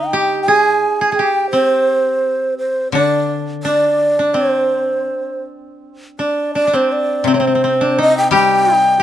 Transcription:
Already playing: D3 C4 D#4
0.07 G5
0.13 G4
0.43 G#5
0.48 G#4
1.01 G#4
1.12 G#4 G5 G#5
1.19 G4
1.51 C4 C5
2.59 C5
2.92 D3 D4 D5
3.63 D4 D5
4.19 D4
4.34 C4 C5
6.19 D4 D5
6.54 D4 D5
6.67 D4
6.73 C4 C5
6.92 D5
7.24 C3 C4
7.28 C5
7.34 C4
7.40 C4
7.47 C4
7.55 C4
7.64 C4
7.81 D4
7.98 D#4 D#5
8.18 G5
8.31 G3 G4 G5
8.76 D#4
9.00 G4

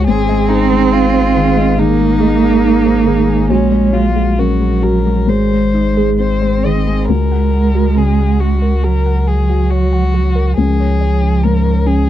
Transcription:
0.07 G#1 G#2 C4 G#4
0.29 G#3 D#5
0.49 D#4 G#4 G#5
0.71 G#3 G#4
0.92 D#4 F4 C5
1.13 G#3 C5
1.35 D#3 G#4
1.56 G#3 D#5
1.78 D#3 A#3 D#4 G#4
1.99 G#3
2.20 G#4 D#5
2.41 G#3 G#4
2.62 D#4
2.84 G#3 C5
3.05 D#3 G#4
3.26 G#3 G#5
3.48 A#1 A#2 G#3 C#4 F#4
3.70 G#3 C#5
3.92 F#3 F4 F#5
4.15 G#3 F#4
4.37 F#3 C#4 F#4 A#4
4.60 G#3 A#4
4.82 F#3 F#4 A#4
5.04 G#3 C#5
5.27 G#1 G#2 G#3 G#4 C5
5.51 G#3
5.73 D#4 D#5
5.97 G#3 G#4
6.19 C4 C5
6.42 G#3 C5
6.65 D#3 G#4 D#5
6.87 G#3 G#5
7.09 C#2 G#3 F#4 A#4
7.32 F#5
7.54 F#5
7.75 F#4
7.96 C#3 G#4
8.19 F#5
8.40 F#4
8.62 A#4
8.83 F#3 F#4 A#4
9.06 F#5
9.27 G#4
9.50 F#4
9.70 F#4 C#5
9.93 F#5
10.14 F#4
10.36 A#4
10.57 C#2 F3 C#4 G#4
10.80 C#5
11.01 C#5
11.23 C#4
11.44 G#2 A#4
11.65 C#5
11.87 C#4 G#4

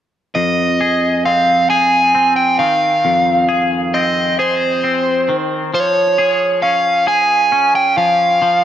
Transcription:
0.35 F2 D#5
0.81 G#4
1.25 C4 F5
1.70 G#4 G#5
2.15 C4
2.36 G5
2.59 D#3 F5
3.05 F2
3.49 G#4
3.94 C4 D#5
4.39 G#4 C5
4.84 C4
5.29 D#3
5.74 F3 C#5
6.18 G#4
6.62 C#4 F5
7.07 G#4 G#5
7.52 C#4
7.75 G5
7.97 F3 F5
8.42 F3

